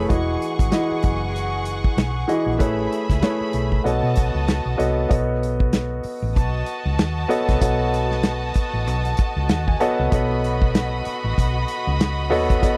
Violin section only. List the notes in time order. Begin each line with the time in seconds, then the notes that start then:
0.10 G#4 F#5 C#6
2.61 G#4 E5 B5
3.86 F#4 D#5 A5
6.36 F#4 D#5 A5
10.12 F#4 D#5 B5